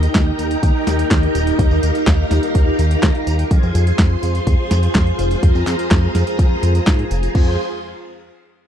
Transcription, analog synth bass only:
0.15 D#2
0.39 D#2
0.63 D#2
0.87 D#2
1.11 D#2
1.35 D#1
1.59 D#2
1.71 D#2
1.83 D#2
2.07 D#2
2.31 D#2
2.55 D#2
2.79 D#2
3.03 D#2
3.27 D#2
3.51 F2
3.63 F2
3.75 F2
3.99 F2
4.23 F2
4.47 F2
4.71 F2
4.95 F2
5.19 F1
5.43 F2
5.55 F2
5.67 F2
5.91 F2
6.15 F2
6.39 F2
6.63 F2
6.87 G#2
7.11 F1
7.35 F2

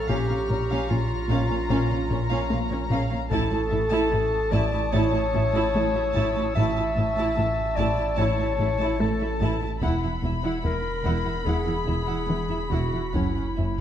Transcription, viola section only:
0.09 C#4
0.30 C#4
0.51 C#4
0.70 C#4
0.90 C#4
1.30 C#4
1.49 C#4
1.70 C#4
1.91 C#4
2.11 C#4
2.31 C#4
2.50 C#4
2.71 C#4
2.91 C#4
3.11 C#4
3.32 E4
3.52 E4
3.71 E4
3.91 E4
4.11 E4
4.52 E4
4.73 E4
4.93 E4
5.13 E4
5.34 E4
5.55 E4
5.74 E4
5.95 E4
6.16 E4
6.37 E4
6.57 E4
6.78 E4
6.98 E4
7.18 E4
7.38 E4
7.78 E4
7.99 E4
8.20 E4
8.41 E4
8.61 E4
8.81 E4
9.01 E4
9.21 E4
9.42 E4
9.62 E4
9.82 E4
10.03 E4
10.23 E4
10.44 E4
10.64 E4
11.05 E4
11.25 E4
11.46 E4
11.67 E4
11.86 E4
12.07 E4
12.28 E4
12.50 E4
12.72 E4
12.94 E4
13.15 C#4
13.36 C#4
13.58 C#4

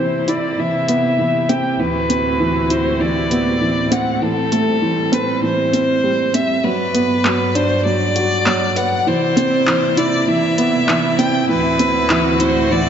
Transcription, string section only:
Already playing: C3 E4 G4
1.79 D2 A2 C4 E4 F#4
4.22 G3
6.64 G2 F#3 D5
9.07 C3 E4
11.49 D2 A2 C4 F#4

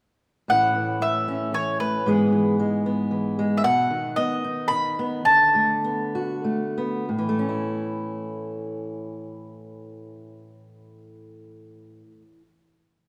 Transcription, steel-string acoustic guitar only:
0.48 A2 E3 A3 C#4 E4
0.75 E3
1.01 A3
1.28 C#4
1.53 E3
1.80 A3
2.06 G#2 E3 G#3 B3 G#4
2.32 E3
2.60 G#3
2.86 B3
3.11 E3
3.39 G#3
3.64 B2
3.90 D#3
4.17 B3
4.44 D#4
4.71 D#3
4.99 B3
5.26 D3
5.55 A3
5.84 B3
6.15 F#4
6.44 A3
6.78 B3
7.09 A2
7.19 E3
7.29 A3
7.39 C#4
7.49 E4

